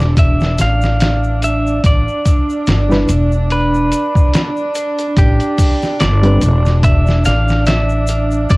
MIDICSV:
0, 0, Header, 1, 6, 480
1, 0, Start_track
1, 0, Tempo, 833333
1, 1058, Time_signature, 4, 2, 24, 8
1, 4937, End_track
2, 0, Start_track
2, 0, Title_t, "Clean electric guitar"
2, 0, Program_c, 0, 27
2, 0, Note_on_c, 0, 74, 93
2, 79, Note_off_c, 0, 74, 0
2, 110, Note_on_c, 0, 76, 113
2, 351, Note_off_c, 0, 76, 0
2, 353, Note_on_c, 0, 77, 114
2, 828, Note_off_c, 0, 77, 0
2, 831, Note_on_c, 0, 76, 102
2, 1048, Note_off_c, 0, 76, 0
2, 1073, Note_on_c, 0, 74, 92
2, 2026, Note_off_c, 0, 74, 0
2, 2028, Note_on_c, 0, 71, 86
2, 2720, Note_off_c, 0, 71, 0
2, 2986, Note_on_c, 0, 67, 84
2, 3439, Note_off_c, 0, 67, 0
2, 3459, Note_on_c, 0, 74, 88
2, 3939, Note_off_c, 0, 74, 0
2, 3942, Note_on_c, 0, 76, 103
2, 4178, Note_off_c, 0, 76, 0
2, 4181, Note_on_c, 0, 77, 101
2, 4416, Note_off_c, 0, 77, 0
2, 4419, Note_on_c, 0, 76, 100
2, 4899, Note_on_c, 0, 74, 96
2, 4913, Note_off_c, 0, 76, 0
2, 4937, Note_off_c, 0, 74, 0
2, 4937, End_track
3, 0, Start_track
3, 0, Title_t, "Reed electric piano"
3, 0, Program_c, 1, 4
3, 1665, Note_on_c, 1, 55, 89
3, 1670, Note_on_c, 1, 62, 85
3, 1676, Note_on_c, 1, 64, 78
3, 1679, Note_on_c, 1, 71, 98
3, 1766, Note_off_c, 1, 55, 0
3, 1769, Note_off_c, 1, 62, 0
3, 1772, Note_off_c, 1, 64, 0
3, 1774, Note_off_c, 1, 71, 0
3, 3587, Note_on_c, 1, 55, 93
3, 3593, Note_on_c, 1, 60, 86
3, 3597, Note_on_c, 1, 62, 83
3, 3601, Note_on_c, 1, 71, 100
3, 3687, Note_off_c, 1, 55, 0
3, 3690, Note_off_c, 1, 60, 0
3, 3692, Note_off_c, 1, 62, 0
3, 3695, Note_off_c, 1, 71, 0
3, 4937, End_track
4, 0, Start_track
4, 0, Title_t, "String section"
4, 0, Program_c, 2, 48
4, 0, Note_on_c, 2, 62, 78
4, 4937, Note_off_c, 2, 62, 0
4, 4937, End_track
5, 0, Start_track
5, 0, Title_t, "Upright bass"
5, 0, Program_c, 3, 32
5, 0, Note_on_c, 3, 28, 99
5, 318, Note_off_c, 3, 28, 0
5, 340, Note_on_c, 3, 33, 91
5, 1039, Note_off_c, 3, 33, 0
5, 1061, Note_on_c, 3, 33, 94
5, 1178, Note_off_c, 3, 33, 0
5, 1543, Note_on_c, 3, 31, 105
5, 1755, Note_off_c, 3, 31, 0
5, 1783, Note_on_c, 3, 28, 100
5, 2240, Note_off_c, 3, 28, 0
5, 2979, Note_on_c, 3, 33, 101
5, 3097, Note_off_c, 3, 33, 0
5, 3460, Note_on_c, 3, 31, 108
5, 3673, Note_off_c, 3, 31, 0
5, 3701, Note_on_c, 3, 28, 103
5, 4159, Note_off_c, 3, 28, 0
5, 4180, Note_on_c, 3, 33, 97
5, 4879, Note_off_c, 3, 33, 0
5, 4899, Note_on_c, 3, 33, 99
5, 4937, Note_off_c, 3, 33, 0
5, 4937, End_track
6, 0, Start_track
6, 0, Title_t, "Drums"
6, 2, Note_on_c, 9, 38, 45
6, 60, Note_off_c, 9, 38, 0
6, 97, Note_on_c, 9, 82, 47
6, 98, Note_on_c, 9, 36, 108
6, 98, Note_on_c, 9, 42, 90
6, 155, Note_off_c, 9, 42, 0
6, 155, Note_off_c, 9, 82, 0
6, 156, Note_off_c, 9, 36, 0
6, 232, Note_on_c, 9, 82, 24
6, 241, Note_on_c, 9, 38, 41
6, 289, Note_off_c, 9, 82, 0
6, 298, Note_off_c, 9, 38, 0
6, 336, Note_on_c, 9, 42, 69
6, 336, Note_on_c, 9, 82, 89
6, 345, Note_on_c, 9, 38, 56
6, 394, Note_off_c, 9, 42, 0
6, 394, Note_off_c, 9, 82, 0
6, 403, Note_off_c, 9, 38, 0
6, 468, Note_on_c, 9, 82, 38
6, 482, Note_on_c, 9, 38, 43
6, 526, Note_off_c, 9, 82, 0
6, 540, Note_off_c, 9, 38, 0
6, 577, Note_on_c, 9, 82, 51
6, 578, Note_on_c, 9, 42, 88
6, 587, Note_on_c, 9, 38, 109
6, 635, Note_off_c, 9, 82, 0
6, 636, Note_off_c, 9, 42, 0
6, 645, Note_off_c, 9, 38, 0
6, 712, Note_on_c, 9, 82, 23
6, 770, Note_off_c, 9, 82, 0
6, 819, Note_on_c, 9, 42, 69
6, 822, Note_on_c, 9, 82, 87
6, 876, Note_off_c, 9, 42, 0
6, 880, Note_off_c, 9, 82, 0
6, 961, Note_on_c, 9, 82, 41
6, 1019, Note_off_c, 9, 82, 0
6, 1058, Note_on_c, 9, 42, 87
6, 1059, Note_on_c, 9, 36, 111
6, 1061, Note_on_c, 9, 82, 54
6, 1116, Note_off_c, 9, 36, 0
6, 1116, Note_off_c, 9, 42, 0
6, 1119, Note_off_c, 9, 82, 0
6, 1197, Note_on_c, 9, 82, 24
6, 1255, Note_off_c, 9, 82, 0
6, 1298, Note_on_c, 9, 42, 59
6, 1299, Note_on_c, 9, 36, 87
6, 1299, Note_on_c, 9, 82, 90
6, 1356, Note_off_c, 9, 36, 0
6, 1356, Note_off_c, 9, 42, 0
6, 1357, Note_off_c, 9, 82, 0
6, 1439, Note_on_c, 9, 82, 42
6, 1496, Note_off_c, 9, 82, 0
6, 1537, Note_on_c, 9, 82, 53
6, 1539, Note_on_c, 9, 42, 81
6, 1548, Note_on_c, 9, 38, 112
6, 1594, Note_off_c, 9, 82, 0
6, 1597, Note_off_c, 9, 42, 0
6, 1606, Note_off_c, 9, 38, 0
6, 1678, Note_on_c, 9, 82, 26
6, 1684, Note_on_c, 9, 38, 42
6, 1735, Note_off_c, 9, 82, 0
6, 1742, Note_off_c, 9, 38, 0
6, 1778, Note_on_c, 9, 82, 99
6, 1779, Note_on_c, 9, 42, 69
6, 1836, Note_off_c, 9, 82, 0
6, 1837, Note_off_c, 9, 42, 0
6, 1911, Note_on_c, 9, 82, 42
6, 1969, Note_off_c, 9, 82, 0
6, 2018, Note_on_c, 9, 42, 89
6, 2020, Note_on_c, 9, 82, 56
6, 2076, Note_off_c, 9, 42, 0
6, 2078, Note_off_c, 9, 82, 0
6, 2155, Note_on_c, 9, 82, 26
6, 2213, Note_off_c, 9, 82, 0
6, 2256, Note_on_c, 9, 42, 67
6, 2258, Note_on_c, 9, 82, 93
6, 2314, Note_off_c, 9, 42, 0
6, 2316, Note_off_c, 9, 82, 0
6, 2392, Note_on_c, 9, 36, 100
6, 2398, Note_on_c, 9, 82, 45
6, 2450, Note_off_c, 9, 36, 0
6, 2456, Note_off_c, 9, 82, 0
6, 2497, Note_on_c, 9, 42, 89
6, 2502, Note_on_c, 9, 82, 58
6, 2506, Note_on_c, 9, 38, 113
6, 2555, Note_off_c, 9, 42, 0
6, 2559, Note_off_c, 9, 82, 0
6, 2564, Note_off_c, 9, 38, 0
6, 2630, Note_on_c, 9, 82, 25
6, 2687, Note_off_c, 9, 82, 0
6, 2736, Note_on_c, 9, 82, 90
6, 2738, Note_on_c, 9, 42, 63
6, 2793, Note_off_c, 9, 82, 0
6, 2795, Note_off_c, 9, 42, 0
6, 2872, Note_on_c, 9, 42, 47
6, 2873, Note_on_c, 9, 82, 46
6, 2930, Note_off_c, 9, 42, 0
6, 2930, Note_off_c, 9, 82, 0
6, 2976, Note_on_c, 9, 36, 109
6, 2976, Note_on_c, 9, 42, 84
6, 2978, Note_on_c, 9, 82, 53
6, 3033, Note_off_c, 9, 42, 0
6, 3034, Note_off_c, 9, 36, 0
6, 3035, Note_off_c, 9, 82, 0
6, 3110, Note_on_c, 9, 42, 40
6, 3112, Note_on_c, 9, 82, 28
6, 3168, Note_off_c, 9, 42, 0
6, 3170, Note_off_c, 9, 82, 0
6, 3215, Note_on_c, 9, 46, 76
6, 3217, Note_on_c, 9, 36, 88
6, 3217, Note_on_c, 9, 82, 98
6, 3273, Note_off_c, 9, 46, 0
6, 3274, Note_off_c, 9, 36, 0
6, 3274, Note_off_c, 9, 82, 0
6, 3352, Note_on_c, 9, 82, 39
6, 3360, Note_on_c, 9, 38, 43
6, 3410, Note_off_c, 9, 82, 0
6, 3417, Note_off_c, 9, 38, 0
6, 3456, Note_on_c, 9, 42, 88
6, 3457, Note_on_c, 9, 82, 56
6, 3465, Note_on_c, 9, 38, 109
6, 3514, Note_off_c, 9, 42, 0
6, 3515, Note_off_c, 9, 82, 0
6, 3523, Note_off_c, 9, 38, 0
6, 3589, Note_on_c, 9, 82, 25
6, 3591, Note_on_c, 9, 42, 44
6, 3647, Note_off_c, 9, 82, 0
6, 3648, Note_off_c, 9, 42, 0
6, 3695, Note_on_c, 9, 42, 66
6, 3695, Note_on_c, 9, 82, 85
6, 3752, Note_off_c, 9, 42, 0
6, 3752, Note_off_c, 9, 82, 0
6, 3834, Note_on_c, 9, 82, 41
6, 3839, Note_on_c, 9, 38, 47
6, 3891, Note_off_c, 9, 82, 0
6, 3897, Note_off_c, 9, 38, 0
6, 3935, Note_on_c, 9, 42, 86
6, 3936, Note_on_c, 9, 36, 111
6, 3937, Note_on_c, 9, 82, 54
6, 3993, Note_off_c, 9, 36, 0
6, 3993, Note_off_c, 9, 42, 0
6, 3994, Note_off_c, 9, 82, 0
6, 4070, Note_on_c, 9, 82, 30
6, 4082, Note_on_c, 9, 38, 38
6, 4128, Note_off_c, 9, 82, 0
6, 4140, Note_off_c, 9, 38, 0
6, 4174, Note_on_c, 9, 82, 94
6, 4179, Note_on_c, 9, 42, 69
6, 4189, Note_on_c, 9, 38, 55
6, 4232, Note_off_c, 9, 82, 0
6, 4237, Note_off_c, 9, 42, 0
6, 4246, Note_off_c, 9, 38, 0
6, 4310, Note_on_c, 9, 82, 38
6, 4322, Note_on_c, 9, 38, 44
6, 4368, Note_off_c, 9, 82, 0
6, 4380, Note_off_c, 9, 38, 0
6, 4414, Note_on_c, 9, 82, 63
6, 4416, Note_on_c, 9, 42, 87
6, 4425, Note_on_c, 9, 38, 110
6, 4471, Note_off_c, 9, 82, 0
6, 4473, Note_off_c, 9, 42, 0
6, 4482, Note_off_c, 9, 38, 0
6, 4546, Note_on_c, 9, 82, 30
6, 4604, Note_off_c, 9, 82, 0
6, 4648, Note_on_c, 9, 82, 102
6, 4657, Note_on_c, 9, 42, 65
6, 4706, Note_off_c, 9, 82, 0
6, 4714, Note_off_c, 9, 42, 0
6, 4787, Note_on_c, 9, 82, 42
6, 4844, Note_off_c, 9, 82, 0
6, 4892, Note_on_c, 9, 82, 49
6, 4896, Note_on_c, 9, 36, 107
6, 4897, Note_on_c, 9, 42, 85
6, 4937, Note_off_c, 9, 36, 0
6, 4937, Note_off_c, 9, 42, 0
6, 4937, Note_off_c, 9, 82, 0
6, 4937, End_track
0, 0, End_of_file